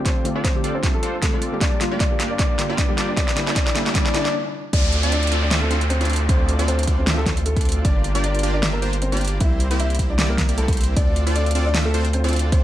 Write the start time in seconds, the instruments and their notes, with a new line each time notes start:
Already playing: string section D2 D3 C4 F4, synth pluck D3 A3 C4 G4, riser
0.05 supersaw synth C4 D4 F4 A4 D5, grand piano C4 C5, kick, snare, closed hi-hat
0.24 synth pluck D3 A3 C4 F4, closed hi-hat
0.35 supersaw synth C4 D4 F4 A4 D5
0.44 grand piano C4 C5, kick, snare, closed hi-hat
0.54 synth pluck D3 A3 C4 G4
0.64 supersaw synth C4 D4 F4 A4 D5, closed hi-hat
0.75 grand piano C4 C5
0.83 synth pluck D3 A3 C4 F4, supersaw synth C4 D4 F4 A4 E5, kick, snare, closed hi-hat
0.94 grand piano A3 A4
1.03 supersaw synth C4 D4 F4 A4 C5, closed hi-hat
1.22 synth pluck D3 A3 C4 F4, grand piano A3 A4, kick, snare, closed hi-hat
1.33 supersaw synth C4 D4 F4 A4 D5
1.42 closed hi-hat
1.52 synth pluck D3 G3 A#3 G4
1.61 string section G2 G3 A#3, supersaw synth A#3 D4 F4 G4 D5, grand piano D4 D5, kick, snare, closed hi-hat
1.80 synth pluck D3 G3 A#3 F4, snare, closed hi-hat
1.91 supersaw synth A#3 D4 F4 G4 D5
2.00 grand piano D4 D5, kick, snare, closed hi-hat
2.10 synth pluck D3 G3 A#3 G4
2.20 supersaw synth A#3 D4 F4 G4 D5, snare, closed hi-hat
2.31 grand piano D4 D5
2.39 supersaw synth D4 F4 G4 D5, grand piano D4 D5, kick, snare, closed hi-hat
2.58 synth pluck D3 G3 A#3 F4, snare, closed hi-hat
2.69 supersaw synth A#3 D4 F4 G4 D5
2.78 grand piano D4 D5, kick, snare, closed hi-hat
2.88 synth pluck D3 G3 A#3 G4
2.98 supersaw synth A#3 D4 F4 G4 D5, snare, closed hi-hat
3.09 grand piano D4 D5
3.17 string section C3 E4, supersaw synth A#3 D4 E4 G4 D5, grand piano D4 D5, kick, snare, closed hi-hat
3.28 snare
3.36 synth pluck D3 G3 A#3 E4, snare, closed hi-hat
3.47 supersaw synth A#3 D4 E4 G4 D5, snare
3.56 supersaw synth A#3 D4 G4 D5, grand piano D4 D5, kick, snare, closed hi-hat
3.67 snare
3.75 synth pluck D3 G3 A#3 E4, snare, closed hi-hat
3.86 supersaw synth A#3 D4 E4 G4 D5, snare
3.94 synth pluck D3 G3 A#3 E4, supersaw synth A#3 D4 E4 G4 D5, grand piano D4 D5, kick, snare, closed hi-hat
4.06 snare
4.14 synth pluck D3 G3 A#3 E4, supersaw synth A#3 D4 E4 G4 D5, grand piano D4 D5, snare, closed hi-hat
4.25 snare
4.73 sub bass D2, string section D3 A3 C4 F4, supersaw synth C4 D4 F4 A4 D5, grand piano D4 D5, kick, closed hi-hat, crash, downlifter
4.92 closed hi-hat
5.03 supersaw synth C4 D4 F4 A4 D5, closed hi-hat
5.12 grand piano D4 D5, closed hi-hat
5.23 closed hi-hat
5.27 closed hi-hat
5.32 supersaw synth C4 D4 F4 A4 D5, closed hi-hat
5.42 grand piano D4 D5
5.51 supersaw synth C4 D4 F4 A4 E5, snare, closed hi-hat
5.62 grand piano A3 A4
5.70 supersaw synth C4 D4 F4 A4 C5, closed hi-hat
5.81 closed hi-hat
5.90 grand piano C4 C5, closed hi-hat
6.01 supersaw synth C4 D4 F4 A4 D5, closed hi-hat
6.05 closed hi-hat
6.10 closed hi-hat
6.13 closed hi-hat
6.16 closed hi-hat
6.29 supersaw synth C4 D4 F4 A4 D5, grand piano C4 C5, kick, closed hi-hat
6.49 closed hi-hat
6.59 supersaw synth C4 D4 F4 A4 D5, closed hi-hat
6.68 grand piano C4 C5, closed hi-hat
6.79 closed hi-hat
6.83 closed hi-hat
6.87 supersaw synth C4 D4 F4 A4 D5, kick, closed hi-hat
6.98 grand piano C4 C5
7.07 supersaw synth C4 D4 F4 A4 E5, snare, closed hi-hat
7.18 grand piano A3 A4
7.26 supersaw synth C4 D4 A4 C5, kick, snare, closed hi-hat
7.37 closed hi-hat
7.46 grand piano A3 A4, closed hi-hat
7.56 supersaw synth C4 D4 F4 A4 D5, kick, closed hi-hat
7.61 closed hi-hat
7.65 closed hi-hat
7.69 closed hi-hat
7.72 closed hi-hat
7.85 sub bass G1, string section G3 D4 A#4, supersaw synth A#3 D4 F4 G4 D5, grand piano D4 D5, kick, closed hi-hat
8.04 closed hi-hat
8.15 supersaw synth A#3 D4 F4 G4 D5, closed hi-hat
8.24 grand piano D4 D5, closed hi-hat
8.35 closed hi-hat
8.39 closed hi-hat
8.43 supersaw synth A#3 D4 F4 G4 D5, closed hi-hat
8.54 grand piano D4 D5
8.63 supersaw synth A#3 D4 F4 G4 E5, snare, closed hi-hat
8.73 grand piano A#3 A#4
8.82 supersaw synth A#3 D4 F4 G4 C5, closed hi-hat
8.93 closed hi-hat
9.02 grand piano C4 C5, closed hi-hat
9.12 supersaw synth A#3 D4 F4 G4 D5, closed hi-hat
9.17 closed hi-hat
9.21 closed hi-hat
9.25 closed hi-hat
9.28 closed hi-hat
9.40 sub bass C2, string section C3 A#3 E4, supersaw synth A#3 C4 E4 G4 C5, grand piano E4 E5, kick, closed hi-hat
9.60 closed hi-hat
9.71 supersaw synth A#3 C4 E4 G4 C5, closed hi-hat
9.80 grand piano E4 E5, closed hi-hat
9.90 closed hi-hat
9.95 closed hi-hat
9.99 supersaw synth A#3 C4 E4 G4 C5, kick, closed hi-hat
10.10 grand piano D4 D5
10.19 supersaw synth A#3 C4 E4 G4 D5, snare, closed hi-hat
10.29 grand piano A#3 A#4
10.38 kick, snare, closed hi-hat
10.49 supersaw synth A#3 C4 E4 G4 D5, closed hi-hat
10.58 grand piano A3 A4, closed hi-hat
10.68 supersaw synth A#3 C4 E4 G4 C5, kick, closed hi-hat
10.73 closed hi-hat
10.77 closed hi-hat
10.81 closed hi-hat
10.84 closed hi-hat
10.96 sub bass D2, string section D3 A3 C4 F4, supersaw synth C4 D4 F4 A4 D5, grand piano D4 D5, kick, closed hi-hat
11.16 closed hi-hat
11.27 supersaw synth C4 D4 F4 A4 D5, closed hi-hat
11.36 grand piano D4 D5, closed hi-hat
11.46 closed hi-hat
11.51 closed hi-hat
11.55 supersaw synth C4 D4 F4 A4 D5, closed hi-hat
11.66 grand piano D4 D5
11.74 supersaw synth C4 D4 F4 A4 E5, snare, closed hi-hat
11.85 grand piano A3 A4
11.94 supersaw synth C4 D4 F4 A4 C5, closed hi-hat
12.05 closed hi-hat
12.13 grand piano C4 C5, closed hi-hat
12.24 supersaw synth C4 D4 F4 A4 D5, closed hi-hat
12.29 closed hi-hat
12.33 closed hi-hat
12.36 closed hi-hat
12.39 closed hi-hat
12.52 supersaw synth C4 D4 F4 A4 D5, grand piano C4 C5, kick, closed hi-hat